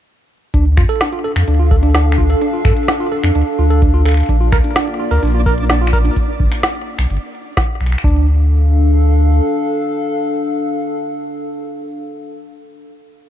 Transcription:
0.54 0.79 D2 loud
0.54 0.64 D4 medium
0.54 4.25 D4 medium
0.54 4.25 A4 medium
0.54 4.25 F5 medium
0.54 kick medium
0.54 closed hi-hat medium
0.77 0.85 G2 medium
0.77 0.81 F4 medium
0.77 finger snap medium
0.77 kick loud
0.89 0.99 A4 loud
0.89 closed hi-hat medium
1.01 1.08 D4 medium
1.01 snare loud
1.01 closed hi-hat medium
1.13 1.19 F4 medium
1.13 closed hi-hat soft
1.24 1.31 A4 medium
1.36 1.44 F2 loud
1.36 finger snap medium
1.36 closed hi-hat medium
1.48 2.35 D2 medium
1.48 1.55 D4 medium
1.48 closed hi-hat medium
1.59 1.66 F4 medium
1.71 1.75 A4 loud
1.71 kick loud
1.83 1.90 D4 medium
1.83 closed hi-hat medium
1.95 2.05 D4 medium
1.95 snare loud
1.95 closed hi-hat medium
2.12 finger snap medium
2.18 2.22 F4 medium
2.18 kick medium
2.30 2.40 A4 medium
2.30 closed hi-hat medium
2.41 2.48 D4 medium
2.41 closed hi-hat medium
2.53 2.60 F4 medium
2.65 2.73 G2 medium
2.65 2.72 A4 loud
2.65 finger snap medium
2.65 kick loud
2.77 closed hi-hat medium
2.88 2.95 D4 medium
2.88 snare loud
2.88 closed hi-hat medium
3.00 3.07 F4 medium
3.00 closed hi-hat soft
3.12 3.16 A4 loud
3.23 3.31 F2 loud
3.23 3.30 D4 medium
3.23 finger snap medium
3.23 closed hi-hat medium
3.35 3.43 D2 medium
3.35 3.45 D4 medium
3.35 closed hi-hat medium
3.59 4.22 D2 loud
3.59 3.63 F4 medium
3.70 3.81 A4 loud
3.70 closed hi-hat medium
3.82 3.89 D4 medium
3.82 kick loud
3.82 closed hi-hat medium
3.94 4.01 F4 medium
4.06 4.12 A4 medium
4.06 finger snap soft
4.08 finger snap soft
4.11 finger snap soft
4.14 finger snap soft
4.17 finger snap soft
4.17 closed hi-hat medium
4.20 finger snap soft
4.23 finger snap soft
4.26 4.54 A#1 loud
4.26 6.15 A#3 medium
4.26 6.17 D4 medium
4.26 4.36 D4 medium
4.26 6.15 F4 medium
4.26 6.17 D5 medium
4.26 6.15 D5 medium
4.26 finger snap soft
4.26 kick medium
4.26 closed hi-hat medium
4.41 4.47 F4 medium
4.52 4.60 D2 medium
4.52 4.56 A#4 medium
4.52 finger snap medium
4.52 kick loud
4.64 4.71 D4 medium
4.64 closed hi-hat medium
4.76 4.86 D4 medium
4.76 snare loud
4.76 closed hi-hat medium
4.88 closed hi-hat soft
4.99 5.03 F4 medium
5.11 5.19 D2 loud
5.11 5.21 A#4 loud
5.11 closed hi-hat soft
5.23 6.10 A#1 loud
5.23 5.29 D4 medium
5.23 closed hi-hat medium
5.25 closed hi-hat medium
5.27 closed hi-hat soft
5.30 closed hi-hat soft
5.32 5.41 F4 medium
5.32 closed hi-hat soft
5.46 5.53 A#4 loud
5.46 kick loud
5.58 closed hi-hat medium
5.70 5.76 D4 medium
5.70 snare loud
5.70 closed hi-hat medium
5.81 5.88 F4 medium
5.87 finger snap medium
5.93 5.97 A#4 loud
5.93 kick medium
6.05 6.12 D4 medium
6.05 closed hi-hat medium
6.16 kick medium
6.16 closed hi-hat medium
6.40 6.48 G1 medium
6.40 kick loud
6.52 finger snap soft
6.52 closed hi-hat medium
6.63 snare loud
6.63 closed hi-hat medium
6.75 closed hi-hat soft
6.99 7.06 B1 loud
6.99 finger snap medium
6.99 closed hi-hat soft
7.10 7.18 G1 loud
7.10 closed hi-hat medium
7.57 kick loud
7.57 snare loud
7.57 closed hi-hat medium
7.81 7.96 B1 medium
7.81 finger snap soft
7.86 finger snap soft
7.92 finger snap soft
7.92 closed hi-hat soft
7.98 finger snap soft
7.98 closed hi-hat soft
8.04 9.41 D2 loud
8.04 12.15 D4 medium
8.04 8.26 D4 medium
8.04 12.15 A4 medium
8.04 12.15 F5 medium
8.04 kick loud
8.08 closed hi-hat soft

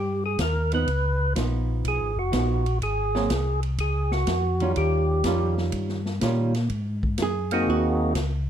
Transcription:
0.00 0.37 G2 medium
0.00 0.24 G4 medium
0.26 0.40 G#4 medium
0.38 0.86 D#2 medium
0.38 0.72 A#4 medium
0.38 kick soft
0.38 snare medium
0.38 hi-hat pedal medium
0.38 ride medium
0.72 0.86 F3 medium
0.72 0.87 B3 medium
0.72 0.87 D#4 medium
0.72 1.33 B4 medium
0.72 ride soft
0.87 1.35 C#2 medium
0.87 kick soft
0.87 ride medium
1.36 1.83 A#1 medium
1.36 2.11 F3 medium
1.36 2.11 B3 medium
1.36 2.12 D#4 medium
1.36 kick soft
1.36 snare medium
1.36 hi-hat pedal medium
1.36 ride medium
1.84 2.00 B1 medium
1.84 2.19 G#4 medium
1.84 kick soft
1.84 ride medium
2.01 2.17 G#1 medium
2.16 2.32 F1 medium
2.16 2.78 F#4 medium
2.32 2.80 A#1 loud
2.32 2.63 F3 medium
2.32 2.63 B3 medium
2.32 2.63 D#4 medium
2.32 kick soft
2.32 snare medium
2.32 hi-hat pedal medium
2.32 ride medium
2.66 ride soft
2.81 3.29 G#1 medium
2.81 3.60 G#4 medium
2.81 kick soft
2.81 ride medium
3.15 3.29 F#3 medium
3.15 3.29 A#3 medium
3.15 3.30 C4 medium
3.15 snare medium
3.30 3.77 C2 medium
3.30 kick soft
3.30 snare medium
3.30 hi-hat pedal medium
3.30 ride medium
3.63 ride soft
3.78 4.26 C#2 medium
3.78 4.12 G#4 medium
3.78 kick soft
3.78 ride medium
4.11 4.72 F#4 medium
4.11 snare soft
4.27 4.74 F2 medium
4.27 kick soft
4.27 snare medium
4.27 hi-hat pedal medium
4.27 ride medium
4.60 5.22 D#3 medium
4.60 5.22 G3 medium
4.60 5.22 C#4 medium
4.60 5.23 F4 medium
4.60 ride soft
4.76 5.23 D#2 medium
4.76 5.54 G4 medium
4.76 kick soft
4.76 ride medium
5.24 5.72 F2 medium
5.24 6.00 D#3 medium
5.24 6.00 G3 medium
5.24 6.00 C#4 medium
5.24 6.01 F4 medium
5.24 kick soft
5.24 snare medium
5.24 hi-hat pedal medium
5.24 ride medium
5.58 snare soft
5.72 6.20 G2 medium
5.72 kick soft
5.72 ride medium
5.89 snare soft
6.06 snare soft
6.21 6.69 A#2 medium
6.21 6.52 D#3 medium
6.21 6.52 G3 medium
6.21 6.52 C#4 medium
6.21 6.52 F4 medium
6.21 kick soft
6.21 snare medium
6.21 hi-hat pedal medium
6.21 ride medium
6.54 snare soft
6.54 ride soft
6.70 7.17 G#2 medium
6.70 kick soft
6.70 ride medium
7.03 kick soft
7.18 7.66 F#2 medium
7.18 kick soft
7.18 snare medium
7.18 hi-hat pedal medium
7.18 ride medium
7.22 7.66 G#4 medium
7.51 8.13 A#3 medium
7.51 8.13 C4 medium
7.51 8.14 D#4 medium
7.51 8.14 F#4 medium
7.51 8.14 G#4 medium
7.51 ride medium
7.67 8.14 D#2 medium
7.67 8.14 F#4 medium
7.67 kick soft
8.15 8.50 C#2 medium
8.15 kick soft
8.15 snare medium
8.15 hi-hat pedal medium
8.15 ride medium

